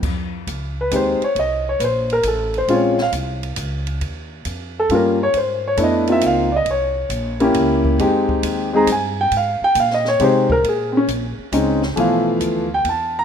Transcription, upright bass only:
0.02 F2
0.47 C#2
0.92 D#2
1.21 muted upright bass stroke
1.35 C2
1.79 A#1
2.23 A1
2.68 A#1
3.12 C2
3.57 C#2
4.01 D#2
4.45 F2
4.89 G2
5.33 G#2
5.77 F2
6.21 C#2
6.65 C2
7.09 A#1
7.54 C#2
7.99 F2
8.43 D#2
8.87 G2
9.31 G#2
9.61 muted upright bass stroke
9.75 A#2
10.20 C3
10.64 A#2
11.07 A#1
11.38 muted upright bass stroke
11.52 C#2
11.96 B1
12.40 D2
12.85 E2

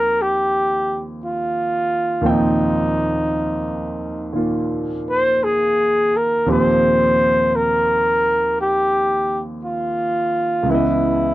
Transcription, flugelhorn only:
Already playing: A#4
0.22 G4
1.25 F4
2.30 D#4
5.10 C5
5.44 G#4
6.17 A#4
6.51 C5
7.56 A#4
8.61 G4
9.65 F4
10.70 E4

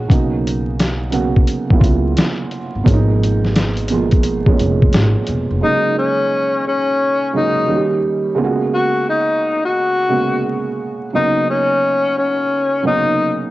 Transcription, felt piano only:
Already playing: C#3 G#3 A#3 B3 C#4 F#4
0.08 C#3 F#3 A#3 B3 D#4
1.11 C#3 F#3 A#3 B3 F#4
1.70 C#3 F#3 A#3 B3 E4
1.80 F4
2.84 B2 F3 G#3 A#3 C#4
2.93 D#4
3.90 B2 F3 G#3 A#3 F4
4.46 A#2 F3 G#3 A#3 C#4
4.52 B2
5.61 C#3 F#3 G#3 A#3 D#4
7.33 C#3 F#3 G#3 A#3 D#4
7.67 D#3 G3 A#3 C#4 F#4
7.76 G4
8.35 C#3 G#3 A#3 B3 F4
8.44 F#4
10.09 C#3 G#3 A#3 B3 F#4
11.13 C#3 F#3 A#3 B3 D#4
12.83 C#3 F#3 A#3 B3 D#4

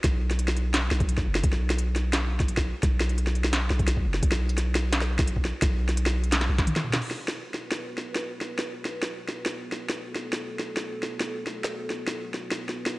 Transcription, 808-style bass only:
0.04 B1
0.91 B1
1.26 F#1
1.44 B1
2.83 B1
3.71 B1
4.05 F#1
4.23 B1
5.62 B1
6.49 B1

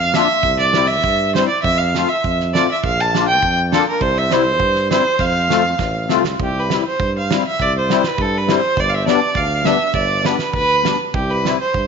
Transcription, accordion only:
0.14 A#3 D4 F4
0.73 G3 C4 E4
1.35 G3 C4 E4
1.95 A3 C4 F4
2.54 A3 C4 F4
3.13 A#3 D4 F4
3.72 A#3 D4 F4
4.30 G3 C4 E4
4.89 G3 C4 E4
5.49 A3 C4 F4
6.09 A3 C4 F4
6.69 G3 C4 E4
7.30 G3 C4 E4
7.89 G3 C4 E4
8.47 G3 C4 E4
9.06 G3 B3 D4
9.63 G3 B3 D4
10.23 G3 B3 D4
10.82 G3 B3 D4
11.43 G3 C4 E4

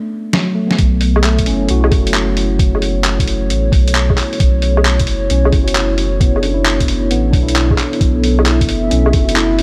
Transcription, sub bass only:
0.79 B1
1.47 F#1
1.70 B1
1.92 F#1
3.27 F#1
3.50 A1
3.72 B1
4.40 B1
5.08 F#1
5.30 B1
5.53 F#1
6.88 F#1
7.11 A1
7.33 B1
8.01 B1
8.68 F#1
8.92 B1
9.14 F#1

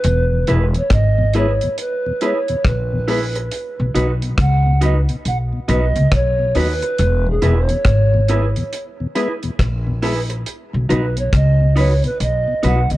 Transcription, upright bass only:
0.04 E1
0.48 E1
0.91 G#1
2.65 A#1
3.80 B1
3.95 B1
4.39 C#2
5.26 B1
5.69 B1
5.96 C#2
6.12 B1
6.55 D#2
6.99 E1
7.42 E1
7.85 G#1
9.59 A#1
10.74 B1
10.90 B1
11.33 C#2
12.20 B1
12.64 B1
12.91 C#2

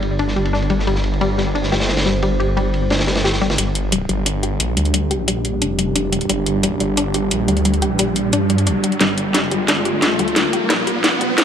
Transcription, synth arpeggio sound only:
0.19 D4
0.36 G3
0.53 D4
0.70 G3
0.87 G3
1.21 G3
1.38 G3
1.55 D4
1.72 G4
2.06 G3
2.23 G3
2.40 G4
2.57 G3
2.91 D4
3.08 G3
3.24 G4
3.41 G3
3.58 G3
3.92 G3
4.09 G3
4.26 D4
4.43 G4
4.77 G3
4.94 G3
5.11 G4
5.28 G3
5.62 D4
5.79 G3
5.96 D4
6.13 G3
6.29 G3
6.63 G3
6.80 G3
6.97 D4
7.14 G4
7.48 G3
7.65 G3
7.82 G4
7.99 G3
8.33 D4
8.50 G3
8.67 D4
8.84 G3
9.01 G3
9.34 G3
9.52 G3
9.68 D4
9.85 G4
10.19 G3
10.36 G3
10.53 G4
10.70 G3
10.87 G3
11.04 D4
11.21 G3
11.38 D4

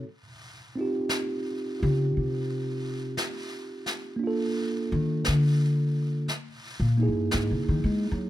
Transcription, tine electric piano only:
0.76 C4 D#4 F4
0.81 G4
1.80 F4 G4
4.16 A#3 D4
4.24 F4 A4
6.98 A#3 D#4 E4
7.03 G#4

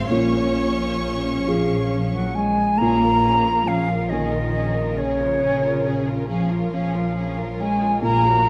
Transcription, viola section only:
Already playing: C4
0.10 C#4
2.81 C#4
3.03 F4
3.25 C#4
3.47 F4
3.68 C#4
3.89 F4
4.10 C#4
4.32 F4
4.55 C#4
4.77 F4
4.98 C#4
5.20 F4
5.42 C#4
5.64 F4
5.86 C#4
6.08 F4
6.29 C#4
6.51 F4
6.73 C#4
6.95 F4
7.16 C#4
7.39 F4
7.60 C#4
7.82 F4
8.04 A#4
8.25 F#4

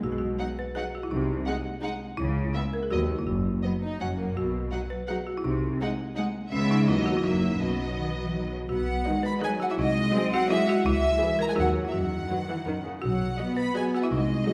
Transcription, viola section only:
0.40 F#3
0.77 F#3
1.48 G#3
1.83 G#3
2.55 G#3
2.91 F#3
3.64 F#3
4.00 F#3
4.72 F#3
5.09 F#3
5.81 G#3
6.17 G#3
6.53 G#3
6.89 F#3
7.25 F#3
7.62 F#3
9.07 D#3 D#4
9.42 D#3 D#4
10.14 F#3 G#4
10.51 F#3 G#4
11.21 E3 G#4
11.58 D#3 F#4
12.30 F#3
12.49 E3
12.67 D#3
12.85 C#3
13.39 F#3 F#4
13.76 F#3 F#4
14.48 G#3 F#4

